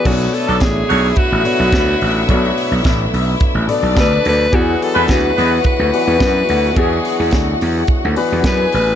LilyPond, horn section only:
\new Staff \with { instrumentName = "Horn section" } { \time 4/4 \key b \dorian \tempo 4 = 107 r8. <fis d' a'>16 r8 <a fis' cis''>8 r2 | r1 | r8. <gis fis' b'>16 r8 <gis fis' b'>8 r2 | r1 | }